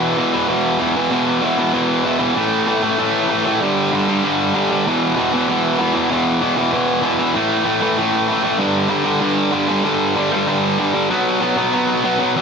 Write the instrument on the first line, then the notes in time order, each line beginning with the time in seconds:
distorted electric guitar
Already playing: E2 B2 E3
0.18 E2 B2 E3
0.33 E2 B2 E3
0.48 E2 B2 E3
0.79 E2 B2 E3
0.96 E2 B2 E3
1.11 E2 B2 E3
1.42 E2 B2 E3
1.58 E2 B2 E3
1.74 E2 B2 E3
2.04 E2 B2 E3
2.19 E2 B2 E3
2.35 A2 E3 A3
2.67 A2 E3 A3
2.83 A2 E3 A3
2.98 A2 E3 A3
3.29 A2 E3 A3
3.46 A2 E3 A3
3.60 G2 D3 G3
3.92 G2 D3 G3
4.08 G2 D3 G3
4.24 G2 D3 G3
4.55 G2 D3 G3
4.71 G2 D3 G3
4.86 E2 B2 E3
5.17 E2 B2 E3
5.33 E2 B2 E3
5.49 E2 B2 E3
5.79 E2 B2 E3
5.94 E2 B2 E3
6.10 E2 B2 E3
6.42 E2 B2 E3
6.56 E2 B2 E3
6.72 E2 B2 E3
7.02 E2 B2 E3
7.18 E2 B2 E3
7.34 A2 E3 A3
7.65 A2 E3 A3
7.81 A2 E3 A3
7.97 A2 E3 A3
8.28 A2 E3 A3
8.43 A2 E3 A3
8.58 G2 D3 G3
8.89 G2 D3 G3
9.04 G2 D3 G3
9.21 G2 D3 G3
9.52 G2 D3 G3
9.68 G2 D3 G3
9.84 G2 D3 G3
10.16 G2 D3 G3
10.32 G2 D3 G3
10.47 G2 D3 G3
10.79 G2 D3 G3
10.93 G2 D3 G3
11.09 B2 F#3 B3
11.40 B2 F#3 B3
11.57 B2 F#3 B3
11.73 B2 F#3 B3
12.04 B2 F#3 B3
12.19 B2 F#3 B3
12.36 E2 B2 E3